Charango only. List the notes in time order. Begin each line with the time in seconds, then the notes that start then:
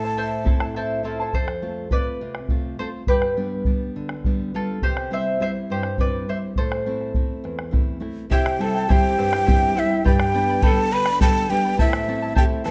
0.03 E4 C5 A5
0.17 E4 A4 C5 E5 A5
0.46 E4 C5 E5 A5
0.60 E4 C5 A5
0.76 E4 A4 C5 E5 A5
1.04 E4 F4 A4 C5 E5 A5
1.20 E4 C5 A5
1.34 A4 C5
1.92 B4 D5
2.79 A4 C5
3.08 G4 B4
4.55 F4 A4
4.83 G4 C5
5.13 C5 E5
5.42 C5 E5
5.71 G4 C5
6.00 B4 D5
6.29 C5 E5
6.58 A4 C5
8.32 E4 G4 C5 E5 G5
8.60 E4 C5 E5 G5
8.74 E4 C5 G5
8.89 E4 G4 C5 E5 G5
9.18 E4 C5 E5 G5
9.33 E4 C5 G5
9.46 E4 G4 C5 E5 G5
9.75 E4 C5 E5 G5
9.90 E4 C5 G5
10.05 G4 B4 D5 G5 B5
10.34 B4 D5 G5 B5
10.49 B4 D5 B5
10.63 G4 B4 D5 G5 B5
10.92 B4 D5 G5 B5
11.07 B4 D5 B5
11.21 G4 B4 D5 G5 B5
11.50 B4 D5 G5 B5
11.65 B4 D5 B5
11.79 E4 A4 C5 E5 A5
12.08 E4 A4 E5 A5
12.22 E4 A4 A5
12.35 E4 A4 C5 E5 A5
12.64 E4 A4 E5 A5